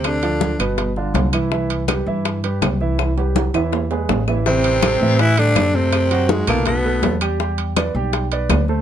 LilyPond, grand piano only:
\new Staff \with { instrumentName = "Grand piano" } { \time 4/4 \key c \major \tempo 4 = 163 <c c' c''>8 <f f' a'>4 <b, b b'>4 <d d' f'>4 <e e' e''>8 | <e e' e''>4 <g g' b'>8 <e e' e''>4 <g g' b'>4 <e e' e''>8~ | <e e' e''>8 <g g' b'>4 <e e' e''>4 <gis gis' b'>4 <e e' e''>8 | \key a \minor <e e' e''>4 <g g' a'>8 <e e' e''>4 <g g' a'>4 <a a' c''>8~ |
<a a' c''>8 <fis fis' fis''>4 <a a' b'>4 <a a' b'>4 <g g' g''>8 | <g g' g''>4 <b b' d''>8 <g g' g''>4 <b b' d''>4 <a a' c''>8 | }